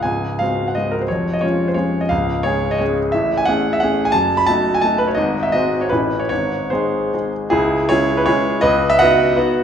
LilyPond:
\new Staff \with { instrumentName = "Grand piano" } { \time 3/4 \key des \major \tempo 4 = 170 << { aes''4 f''8. ges''16 ees''8 bes'16 c''16 | des''8. ees''16 des''8. c''16 des''8. ees''16 | f''4 des''8. ees''16 des''8 r8 | \key cis \minor e''8. gis''16 fis''8. e''16 fis''8. gis''16 |
a''8. b''16 a''8. gis''16 a''8 b'16 cis''16 | dis''8. e''16 dis''8. cis''16 b'8. cis''16 | cis''4 bis'4. r8 | <e' gis'>4 <gis' cis''>8. b'16 <gis' cis''>4 |
<b' dis''>8. e''16 <dis'' fis''>4. r8 | } \\ { <des,, des,>4 <aes c' ges'>4 <aes c' ges'>4 | <f,, f,>4 <aes des' f'>4 <aes des' f'>4 | <des,, des,>4 <aes des' aes'>4 <aes des' aes'>4 | <a,, a,>4 <a cis' gis'>4 <a cis' gis'>4 |
<fis,, fis,>4 <a dis' fis'>4 <a dis' fis'>4 | <gis,, gis,>4 <gis bis fis'>4 <a,, a, cis' e'>4 | <gis,, gis,>4 <gis dis' gis'>4 <gis dis' gis'>4 | cis,4 <gis cis' e'>4 <gis cis' e'>4 |
cis,4 <b dis' fis'>4 <b dis' fis'>4 | } >> }